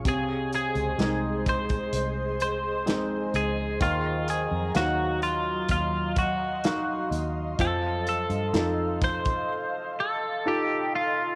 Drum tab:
HH |x-xxx-xxx-x-x-x-|x-x-x-x-x-x-x-x-|x-xxx-xx--------|
SD |----o-------o---|----o-------o---|----o-----------|
BD |o-----oo--------|o-------o-o-----|o-----oo--------|